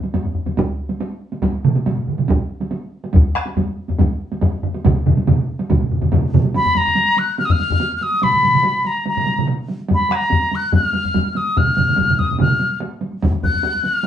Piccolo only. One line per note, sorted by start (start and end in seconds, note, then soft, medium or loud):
6.56 6.79 B5 medium
6.77 7.20 A#5 medium
7.19 7.38 F#6 medium
7.39 7.47 F6 medium
7.45 7.53 D#6 medium
7.51 7.96 F6 loud
7.97 8.04 F6 medium
8.03 8.25 D#6 loud
8.23 8.88 B5 medium
8.87 9.07 A#5 medium
9.08 9.47 A#5 medium
9.94 10.16 B5 medium
10.15 10.57 A#5 medium
10.55 10.74 F#6 medium
10.75 11.38 F6 loud
11.37 11.59 D#6 medium
11.58 12.20 F6 medium
12.19 12.40 D#6 medium
12.40 12.79 F6 medium
13.44 13.87 F#6 medium
13.85 14.07 F6 medium